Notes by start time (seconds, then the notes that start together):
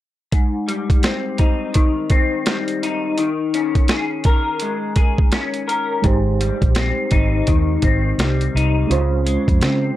0.32 G#2, kick, closed hi-hat
0.68 G3, closed hi-hat
0.90 kick, closed hi-hat
1.03 C4, snare, closed hi-hat
1.38 D#4, kick, closed hi-hat
1.74 D#3, kick, closed hi-hat
2.10 C4, kick, closed hi-hat
2.46 G3, snare, closed hi-hat
2.68 closed hi-hat
2.83 D#4, closed hi-hat
3.18 D#3, closed hi-hat
3.54 C#4, closed hi-hat
3.75 kick, closed hi-hat
3.88 G#4, snare, closed hi-hat
4.24 A#4, kick, closed hi-hat
4.60 G#3, closed hi-hat
4.96 G#4, kick, closed hi-hat
5.18 kick
5.32 C#4, snare, closed hi-hat
5.54 closed hi-hat
5.68 A#4, closed hi-hat
6.02 G#1 G#2 G#3 D#4 G4, kick, closed hi-hat
6.07 C5
6.41 G3, closed hi-hat
6.62 A#1, kick, closed hi-hat
6.75 C4, snare, closed hi-hat
7.11 G#1 D#4, kick, closed hi-hat
7.47 D#2 D#3, kick, closed hi-hat
7.82 G#1 C4, kick, closed hi-hat
8.18 C2 G3, snare, closed hi-hat
8.41 closed hi-hat
8.55 C2 D#4, closed hi-hat
8.87 C#2 C#3 G#3 C#4 F4, closed hi-hat
8.92 C5
9.26 G#3, closed hi-hat
9.48 F2, kick, closed hi-hat
9.61 C#3 C4, snare, closed hi-hat